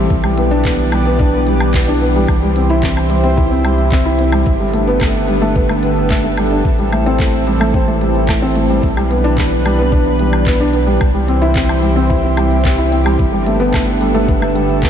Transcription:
Already playing: analog synth pad E3 G4, felt piano G3 A3 C4
0.10 sub bass B1, analog synth pad B3 D5, kick, closed hi-hat
0.24 felt piano G3, closed hi-hat, low woodblock
0.38 felt piano B3, closed hi-hat
0.51 felt piano D4, closed hi-hat
0.65 felt piano B3, kick, clap, closed hi-hat
0.79 closed hi-hat
0.92 felt piano G3, closed hi-hat, low woodblock
1.06 felt piano B3, closed hi-hat
1.19 felt piano D4, kick, closed hi-hat
1.33 felt piano B3, closed hi-hat
1.47 felt piano G3, closed hi-hat
1.60 closed hi-hat, low woodblock
1.74 felt piano B3, kick, clap, closed hi-hat
1.88 felt piano D4, closed hi-hat
2.01 felt piano B3, closed hi-hat
2.15 felt piano G3, closed hi-hat
2.28 sub bass C2, analog synth pad C4 C5, kick, closed hi-hat, low woodblock
2.42 felt piano G3, closed hi-hat
2.56 felt piano C4, closed hi-hat
2.70 felt piano E4, closed hi-hat
2.83 felt piano C4, kick, clap, closed hi-hat
2.97 closed hi-hat, low woodblock
3.10 felt piano G3, closed hi-hat
3.24 felt piano C4, closed hi-hat
3.37 felt piano E4, kick, closed hi-hat
3.51 felt piano C4, closed hi-hat
3.64 felt piano G3, closed hi-hat, low woodblock
3.78 closed hi-hat
3.92 felt piano C4, kick, clap, closed hi-hat
4.05 felt piano E4, closed hi-hat
4.19 felt piano C4, closed hi-hat
4.32 felt piano G3, closed hi-hat, low woodblock
4.46 sub bass G1, analog synth pad D3 B3 A4, kick, closed hi-hat
4.60 felt piano G3, closed hi-hat
4.74 felt piano A3, closed hi-hat
4.87 felt piano B3, closed hi-hat
5.01 felt piano A3, kick, clap, closed hi-hat, low woodblock
5.15 closed hi-hat
5.28 felt piano G3, closed hi-hat
5.42 felt piano A3, closed hi-hat
5.56 felt piano B3, kick, closed hi-hat
5.69 felt piano A3, closed hi-hat, low woodblock
5.83 felt piano B3, closed hi-hat
5.97 closed hi-hat
6.10 felt piano A3, kick, clap, closed hi-hat
6.24 felt piano A3, closed hi-hat
6.37 felt piano G3, closed hi-hat, low woodblock
6.51 felt piano D4, closed hi-hat
6.65 sub bass A1, analog synth pad E3 C4, kick, closed hi-hat
6.79 felt piano G3, closed hi-hat
6.93 felt piano A3, closed hi-hat, low woodblock
7.06 felt piano C4, closed hi-hat
7.20 felt piano A3, kick, clap, closed hi-hat
7.33 closed hi-hat
7.47 felt piano G3, closed hi-hat
7.60 felt piano A3, closed hi-hat, low woodblock
7.74 felt piano C4, kick, closed hi-hat
7.88 felt piano A3, closed hi-hat
8.01 felt piano G3, closed hi-hat
8.15 closed hi-hat
8.29 felt piano A3, kick, clap, closed hi-hat, low woodblock
8.42 felt piano C4, closed hi-hat
8.55 felt piano A3, closed hi-hat
8.69 felt piano G3, closed hi-hat
8.83 sub bass B1, analog synth pad D4 B4, kick, closed hi-hat
8.97 felt piano G3, closed hi-hat, low woodblock
9.11 felt piano B3, closed hi-hat
9.24 felt piano D4, closed hi-hat
9.38 felt piano B3, kick, clap, closed hi-hat
9.52 closed hi-hat
9.66 felt piano G3, closed hi-hat, low woodblock
9.79 felt piano B3, closed hi-hat
9.92 felt piano D4, kick, closed hi-hat
10.06 felt piano B3, closed hi-hat
10.19 felt piano G3, closed hi-hat
10.33 closed hi-hat, low woodblock
10.46 felt piano B3, kick, clap, closed hi-hat
10.60 felt piano D4, closed hi-hat
10.73 felt piano B3, closed hi-hat
10.87 felt piano G3, closed hi-hat
11.00 sub bass C2, analog synth pad E3 C4 G4 C5, kick, closed hi-hat, low woodblock
11.14 felt piano G3, closed hi-hat
11.28 felt piano C4, closed hi-hat
11.42 felt piano E4, closed hi-hat
11.55 felt piano C4, kick, clap, closed hi-hat
11.69 closed hi-hat, low woodblock
11.83 felt piano G3, closed hi-hat
11.96 felt piano C4, closed hi-hat
12.10 felt piano E4, kick, closed hi-hat
12.23 felt piano C4, closed hi-hat
12.37 felt piano G3, closed hi-hat, low woodblock
12.51 closed hi-hat
12.64 felt piano C4, kick, clap, closed hi-hat
12.78 felt piano E4, closed hi-hat
12.91 felt piano C4, closed hi-hat
13.05 felt piano G3, closed hi-hat, low woodblock
13.19 sub bass G1, analog synth pad D3 B3 A4, kick, closed hi-hat
13.33 felt piano G3, closed hi-hat
13.47 felt piano A3, closed hi-hat
13.60 felt piano B3, closed hi-hat
13.73 felt piano A3, kick, clap, closed hi-hat, low woodblock
13.88 closed hi-hat
14.01 felt piano G3, closed hi-hat
14.14 felt piano A3, closed hi-hat
14.28 felt piano B3, kick, closed hi-hat
14.42 felt piano A3, closed hi-hat, low woodblock
14.55 felt piano G3, closed hi-hat
14.70 closed hi-hat
14.83 felt piano B3, kick, clap, closed hi-hat

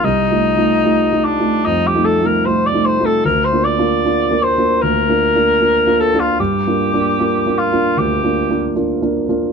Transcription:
0.04 grand piano C2, cor anglais D#4
0.30 grand piano A3 D#4 F4
0.56 grand piano A3 D#4 F4
0.84 grand piano A3 D#4 F4
1.12 grand piano A3 D#4 F4
1.24 cor anglais D4
1.39 grand piano A3 D#4 F4
1.66 grand piano F2, cor anglais D#4
1.87 cor anglais G4
1.95 grand piano A3 D#4 F4
2.05 cor anglais A4
2.20 grand piano A3 D#4 F4
2.26 cor anglais A#4
2.46 grand piano A3 D#4 F4, cor anglais C5
2.67 cor anglais D5
2.73 grand piano A3 D#4 F4
2.85 cor anglais C5
3.00 grand piano A3 D#4 F4
3.06 cor anglais A4
3.25 grand piano D2, cor anglais A#4
3.45 cor anglais C5
3.52 grand piano A#3 D4 F4
3.65 cor anglais D5
3.79 grand piano A#3 D4 F4
4.05 grand piano A#3 D4 F4
4.31 grand piano A#3 D4 F4
4.43 cor anglais C5
4.58 grand piano A#3 D4 F4
4.82 grand piano D2, cor anglais A#4
5.09 grand piano A#3 D4 F4
5.35 grand piano A#3 D4 F4
5.61 grand piano A#3 D4 F4
5.87 grand piano A#3 D4 F4
6.00 cor anglais A4
6.14 grand piano A#3 D4 F4
6.20 cor anglais F4
6.40 grand piano G2, cor anglais G4
6.67 grand piano A#3 D4 F4
6.93 grand piano A#3 D4 F4
7.19 grand piano A#3 D4 F4
7.46 grand piano A#3 D4 F4
7.58 cor anglais F4
7.72 grand piano A#3 D4 F4
7.97 grand piano D2, cor anglais G4
8.23 grand piano A#3 D4 F4
8.50 grand piano A#3 D4 F4
8.76 grand piano A#3 D4 F4
9.02 grand piano A#3 D4 F4
9.29 grand piano A#3 D4 F4

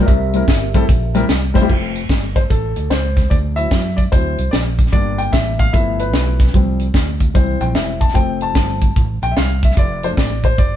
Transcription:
0.00 grand piano G3 D4 F4 A#4
0.06 fingered electric bass C2, grand piano C3, tine electric piano G4 A#4 E5, kick, closed hi-hat
0.33 grand piano G3 C4 E4 A#4, closed hi-hat
0.48 fingered electric bass G1, kick, snare, closed hi-hat
0.74 grand piano G3 C4 E4 A4, kick, closed hi-hat
0.89 fingered electric bass A#1, kick, closed hi-hat
1.14 grand piano G3 C4 E4 A#4, closed hi-hat
1.29 fingered electric bass C2, snare, closed hi-hat
1.54 grand piano G3 C4 E4 C5, kick, snare, closed hi-hat
1.62 grand piano G3 C4 E4 G4
1.69 fingered electric bass F1, grand piano A3 C4 F4, kick, crash
1.95 closed hi-hat
2.09 fingered electric bass G1, kick, snare, closed hi-hat
2.36 grand piano C5, kick, closed hi-hat
2.50 fingered electric bass A1, grand piano A4, kick, closed hi-hat
2.76 fingered electric bass D2, closed hi-hat
2.90 fingered electric bass C#2, grand piano C5, snare, closed hi-hat
3.17 kick, snare, closed hi-hat
3.30 fingered electric bass D2, grand piano D5, kick, closed hi-hat
3.56 grand piano F#3 C4 E4 E5, closed hi-hat
3.71 fingered electric bass F#2, kick, snare, closed hi-hat
3.97 grand piano D5, kick, closed hi-hat
4.12 fingered electric bass D2, grand piano F#3 C4 E4 C5, kick, closed hi-hat
4.38 fingered electric bass C2, closed hi-hat
4.51 fingered electric bass A#1, grand piano D5, snare, closed hi-hat
4.79 kick, closed hi-hat
4.86 snare
4.92 fingered electric bass G1, grand piano G3 A#3 D4 D5, kick, closed hi-hat
5.18 grand piano G5, closed hi-hat
5.32 fingered electric bass A1, grand piano E5, kick, snare, closed hi-hat
5.59 grand piano F5, kick, closed hi-hat
5.73 fingered electric bass G1, grand piano F3 A3 B3 E4 E5, kick, closed hi-hat
5.99 grand piano B4, closed hi-hat
6.13 fingered electric bass B1, snare, closed hi-hat
6.40 kick, snare, closed hi-hat
6.47 snare
6.54 fingered electric bass C2, grand piano F3 G3 C4, kick, closed hi-hat
6.79 closed hi-hat
6.94 fingered electric bass D2, kick, snare, closed hi-hat
7.20 kick, closed hi-hat
7.34 fingered electric bass C2, grand piano E3 G3 C4 C5, kick, closed hi-hat
7.61 fingered electric bass A#1, grand piano G5, closed hi-hat
7.75 fingered electric bass E1, grand piano E5, snare, closed hi-hat
8.01 grand piano A5, kick, closed hi-hat
8.08 snare
8.14 fingered electric bass F1, grand piano F3 A3 C4 G5, kick, closed hi-hat
8.41 grand piano A5, closed hi-hat
8.55 fingered electric bass G1, kick, snare, closed hi-hat
8.81 kick, closed hi-hat
8.96 fingered electric bass A1, kick, closed hi-hat
9.22 fingered electric bass A#1, grand piano G5, closed hi-hat
9.31 grand piano E5
9.36 fingered electric bass C2, grand piano F5, snare, closed hi-hat
9.63 grand piano E5, kick, closed hi-hat
9.70 snare
9.77 fingered electric bass F1, grand piano D5, kick, closed hi-hat
10.03 grand piano F3 A3 D4 C5, closed hi-hat
10.17 fingered electric bass A1, grand piano D5, kick, snare, closed hi-hat
10.43 grand piano C5, kick, closed hi-hat
10.58 fingered electric bass G1, grand piano D5, kick, closed hi-hat

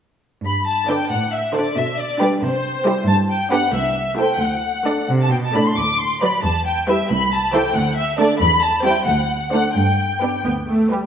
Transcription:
0.44 cello section G2, violin section B5
0.67 violin section A5
0.88 viola section D3 D4, violin section B4 D5 G5
1.11 cello section A2, violin section F#5
1.33 violin section E5
1.54 viola section D3 D4, violin section A4 C5 D5
1.77 cello section B2, violin section E5
2.00 violin section D5
2.21 viola section G3 D4, violin section G4 B4 D5
2.43 cello section C3, violin section C5
2.86 viola section G3 E4, violin section G4 C5
3.08 cello section G2, violin section A5
3.30 violin section G5
3.51 viola section B3 D4, violin section G4 B4 F#5
3.74 cello section C2, violin section E5
4.18 viola section A3 E4, violin section A4 C5 G5
4.41 cello section D2, violin section F#5
4.86 viola section A3 D4, violin section A4 D5
5.09 cello section C3
5.22 violin section A5
5.32 cello section B2, violin section G5
5.45 violin section A5
5.54 cello section A2, viola section A3 D4, violin section A4 D5 B5
5.66 violin section C6
5.77 cello section D2, violin section D6
5.99 violin section C6
6.22 viola section F#3 F#4, violin section B4 D5 B5
6.43 cello section E2, violin section A5
6.67 violin section G5
6.89 viola section G3 E4, violin section B4 E5
7.11 cello section C2, violin section B5
7.32 violin section A5
7.53 viola section E3 E4, violin section A4 C5 G5
7.75 cello section D2, violin section F#5
7.97 violin section E5
8.19 viola section A3 D4, violin section A4 D5
8.39 cello section E2, violin section B5
8.63 violin section A5
8.84 viola section G3 C4, violin section E4 C5 G5
9.06 cello section D2, violin section F#5
9.52 viola section A3 D4, violin section A4 C5 F#5
9.75 cello section G2, violin section G5
10.22 viola section B3 D4, violin section G4 B4
10.45 cello section D2, viola section B3
10.68 viola section A3
10.91 viola section G3, violin section G4 B4

